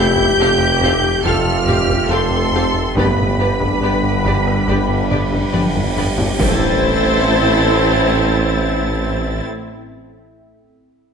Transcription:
0.00 0.29 F1 loud
0.00 2.98 F1 medium
0.00 2.95 A3 loud
0.00 2.96 C4 medium
0.00 0.35 E4 loud
0.00 1.22 G4 loud
0.00 2.94 G4 loud
0.00 2.94 G5 loud
0.00 1.21 G6 loud
0.15 0.29 F2 loud
0.15 taiko medium
0.37 1.07 F1 loud
0.37 1.15 F1 loud
0.37 0.51 F2 medium
0.37 0.48 C4 medium
0.37 1.23 G4 loud
0.37 0.48 G4 medium
0.37 0.48 A4 medium
0.37 0.48 F5 medium
0.59 0.72 F2 medium
0.80 0.94 F2 loud
0.80 0.90 C4 medium
0.80 0.91 G4 medium
0.80 0.91 A4 medium
0.80 0.91 F5 medium
0.80 taiko medium
1.02 1.15 F2 medium
1.23 2.00 F1 medium
1.23 2.01 F1 loud
1.23 1.37 F2 loud
1.23 1.33 C4 medium
1.23 2.11 F4 loud
1.23 1.33 G4 medium
1.23 1.67 A4 medium
1.23 1.33 A4 medium
1.23 1.33 F5 medium
1.23 2.09 F6 loud
1.23 taiko medium
1.44 1.58 F2 medium
1.66 1.79 F2 medium
1.66 1.75 C4 medium
1.66 2.10 G4 medium
1.66 1.76 G4 medium
1.66 1.76 A4 medium
1.66 1.76 F5 medium
1.66 taiko mid medium
1.86 2.00 F2 loud
1.86 taiko medium
2.09 2.86 F1 medium
2.09 2.87 F1 medium
2.09 2.22 F2 medium
2.09 2.80 C4 medium
2.09 2.19 C4 medium
2.09 2.19 G4 medium
2.09 2.96 A4 medium
2.09 2.19 A4 medium
2.09 2.19 F5 medium
2.09 2.97 C6 loud
2.30 2.44 F2 medium
2.52 2.65 F2 loud
2.52 2.63 C4 medium
2.52 2.62 G4 medium
2.52 2.63 A4 medium
2.52 2.63 F5 medium
2.74 2.87 F2 medium
2.95 3.72 G1 medium
2.95 6.39 G1 medium
2.95 3.08 G2 loud
2.95 6.39 G3 medium
2.95 5.93 B3 medium
2.95 3.05 B3 medium
2.95 6.39 D4 medium
2.95 6.35 G4 medium
2.95 3.05 G4 medium
2.95 5.96 B4 medium
2.95 3.06 B4 medium
2.95 3.06 D5 medium
2.95 6.35 G5 medium
2.95 5.93 B5 medium
2.95 taiko loud
2.95 cymbal swell medium
3.17 3.30 G2 medium
3.17 taiko mid medium
3.38 3.52 G2 medium
3.38 3.47 B3 medium
3.38 3.47 G4 medium
3.38 3.49 B4 medium
3.38 3.48 D5 medium
3.60 3.73 G2 loud
3.60 taiko medium
3.81 4.58 G1 medium
3.81 3.94 G2 medium
3.81 3.90 B3 medium
3.81 3.90 G4 medium
3.81 3.91 B4 medium
3.81 3.92 D5 medium
4.03 4.16 G2 medium
4.25 4.38 G2 loud
4.25 4.34 B3 medium
4.25 4.35 G4 medium
4.25 4.34 B4 medium
4.25 4.34 D5 medium
4.25 taiko medium
4.46 4.59 G2 medium
4.46 taiko rim soft
4.67 5.44 G1 medium
4.67 4.81 G2 loud
4.67 4.77 B3 medium
4.67 4.77 G4 medium
4.67 4.76 B4 medium
4.67 4.76 D5 medium
4.67 taiko medium
4.89 5.02 G2 medium
5.11 5.24 G2 medium
5.11 5.20 B3 medium
5.11 5.20 G4 medium
5.11 5.19 B4 medium
5.11 5.19 D5 medium
5.11 taiko mid medium
5.32 5.45 G2 loud
5.32 taiko medium
5.52 6.29 G1 medium
5.52 6.30 G1 medium
5.52 5.67 G2 medium
5.52 5.62 B3 medium
5.52 5.62 G4 medium
5.52 5.61 B4 medium
5.52 5.60 D5 medium
5.52 taiko high medium
5.75 5.88 G2 medium
5.75 taiko low-mid medium
5.97 6.10 G2 loud
5.97 6.05 B3 medium
5.97 6.05 G4 medium
5.97 6.05 B4 medium
5.97 6.05 D5 medium
5.97 taiko low-mid medium
6.18 6.32 G2 medium
6.18 taiko low loud
6.39 9.41 A1 loud
6.39 9.42 A1 medium
6.39 9.41 A2 medium
6.39 9.42 A3 medium
6.39 9.42 C4 medium
6.39 9.43 C4 medium
6.39 9.41 E4 medium
6.39 9.43 E4 medium
6.39 9.41 A4 medium
6.39 9.42 C5 loud
6.39 9.42 E5 loud
6.39 9.41 A6 loud
6.39 taiko loud
6.39 impact loud

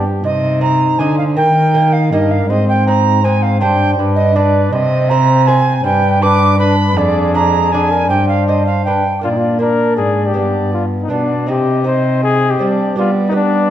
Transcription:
0.00 0.21 B3 soft
0.00 0.22 D4 soft
0.00 0.25 G4 medium
0.24 0.95 C3 medium
0.24 1.33 D#4 medium
0.24 1.38 C5 medium
0.24 0.60 D#5 medium
0.61 0.95 C4 medium
0.61 0.95 D#4 medium
0.61 1.00 A#5 loud
0.99 1.37 D3 medium
0.99 1.33 D3 medium
0.99 1.33 C4 medium
0.99 1.34 D#5 medium
0.99 1.18 G#5 medium
1.18 1.24 F5 medium
1.36 2.12 D#3 medium
1.36 2.08 D#3 medium
1.36 2.11 D#4 medium
1.36 1.96 A#4 medium
1.36 1.94 G5 loud
1.74 2.08 A#3 medium
1.74 2.08 D#4 medium
1.93 2.12 F5 medium
2.10 2.47 G2 medium
2.10 2.46 G2 medium
2.10 2.46 A#3 medium
2.10 2.49 D#4 medium
2.10 2.46 D#4 medium
2.10 2.52 A#4 medium
2.10 2.33 D#5 medium
2.31 2.49 F5 medium
2.48 3.62 G#2 medium
2.48 3.58 G#2 medium
2.48 3.22 C4 medium
2.48 3.22 C5 medium
2.48 2.68 D#5 medium
2.69 2.87 G5 medium
2.87 3.21 G#3 medium
2.87 3.21 C4 medium
2.87 3.21 D#4 medium
2.87 3.26 A#5 loud
3.23 3.58 G#3 medium
3.23 3.62 C4 medium
3.23 3.58 C4 medium
3.23 3.58 D#4 medium
3.23 3.60 C5 medium
3.23 3.44 G#5 medium
3.43 3.60 F5 medium
3.60 3.97 G2 medium
3.60 3.94 G2 medium
3.60 3.97 D4 medium
3.60 3.95 D4 medium
3.60 4.00 C5 medium
3.60 3.95 C5 medium
3.60 3.91 G5 loud
3.98 4.71 G2 medium
3.98 4.69 G2 medium
3.98 4.34 D4 medium
3.98 4.36 B4 medium
4.16 4.37 D#5 loud
4.35 4.72 D4 medium
4.35 4.69 D4 medium
4.35 4.70 B4 medium
4.35 4.73 B4 medium
4.35 4.73 D5 medium
4.72 5.81 C3 medium
4.72 5.86 C4 medium
4.72 5.87 C5 medium
4.72 5.11 D#5 loud
5.09 5.44 C4 medium
5.09 5.44 C5 medium
5.09 5.49 A#5 loud
5.47 5.81 C4 medium
5.47 5.81 C5 medium
5.47 5.84 G#5 medium
5.84 6.93 G2 medium
5.84 6.94 G2 medium
5.84 6.21 D4 medium
5.84 6.21 B4 medium
5.84 6.24 G5 loud
6.22 6.59 D4 medium
6.22 6.56 D4 medium
6.22 6.57 B4 medium
6.22 6.56 B4 medium
6.22 6.58 D6 loud
6.58 6.96 D4 medium
6.58 6.93 D4 medium
6.58 6.77 B4 medium
6.58 6.94 B4 medium
6.58 6.99 B5 loud
6.78 6.96 B4 medium
6.96 8.10 F2 medium
6.96 8.06 F2 medium
6.96 7.70 D4 medium
6.96 7.71 G#4 medium
6.96 7.34 D5 loud
7.34 7.68 G#3 medium
7.34 7.68 D4 medium
7.34 7.69 D5 medium
7.34 7.73 A#5 loud
7.72 8.07 G#3 medium
7.72 8.09 D4 medium
7.72 8.07 D4 medium
7.72 7.93 G#4 medium
7.72 8.07 D5 medium
7.72 8.09 G#5 medium
7.91 8.11 A#4 medium
8.09 9.04 G2 medium
8.09 9.01 G2 medium
8.09 8.68 D4 medium
8.09 8.89 C5 medium
8.09 8.28 G5 loud
8.29 8.47 F5 medium
8.48 8.82 D4 medium
8.48 8.82 C5 medium
8.48 8.66 D#5 medium
8.66 8.84 F5 medium
8.85 9.04 D4 medium
8.85 9.20 D4 soft
8.85 9.05 B4 medium
8.85 9.21 B4 soft
8.85 9.22 G5 medium
9.21 9.99 A#2 medium
9.21 9.95 A#2 soft
9.21 9.57 A#3 soft
9.21 9.58 D4 medium
9.21 9.58 D4 soft
9.21 9.33 F4 medium
9.21 9.59 D5 medium
9.32 9.38 D#4 medium
9.37 9.60 F4 medium
9.59 10.32 A#3 soft
9.59 10.33 D4 soft
9.59 10.38 D4 medium
9.59 9.97 A#4 medium
9.59 10.35 D5 medium
9.97 10.36 G#2 medium
9.97 10.32 G#2 soft
9.97 10.28 G#4 medium
10.26 10.73 G4 medium
10.34 11.10 G2 medium
10.34 11.06 G2 medium
10.34 11.07 B3 soft
10.34 11.10 B3 medium
10.34 11.08 D4 soft
10.34 10.83 D5 medium
10.74 10.86 F4 medium
11.03 11.11 D#4 medium
11.08 11.49 B2 medium
11.08 11.44 B2 soft
11.08 11.46 B3 soft
11.08 11.50 B3 medium
11.08 11.46 D4 soft
11.08 11.48 D4 medium
11.08 11.48 D5 medium
11.47 12.59 C3 medium
11.47 12.56 C3 medium
11.47 11.83 C4 soft
11.47 11.85 C4 medium
11.47 11.84 D#4 soft
11.47 11.86 G4 medium
11.47 11.84 D#5 medium
11.84 12.57 C4 medium
11.84 12.58 C4 medium
11.84 12.57 D#4 soft
11.84 12.23 C5 medium
11.84 12.62 D#5 medium
12.23 12.52 G#4 loud
12.50 12.97 G4 medium
12.59 12.96 G3 medium
12.59 12.94 G3 medium
12.59 12.95 C4 soft
12.59 12.96 C4 medium
12.59 12.96 D4 soft
12.59 12.97 D5 medium
12.96 13.70 G3 medium
12.96 13.68 G3 medium
12.96 13.30 B3 medium
12.96 13.33 B3 medium
12.96 13.11 F4 medium
12.96 13.31 G4 medium
12.96 13.34 D5 medium
13.28 13.69 B3 medium
13.28 13.32 D#4 medium
13.32 13.70 B3 medium
13.32 13.70 D4 medium
13.32 13.69 G4 soft
13.32 13.70 D5 medium

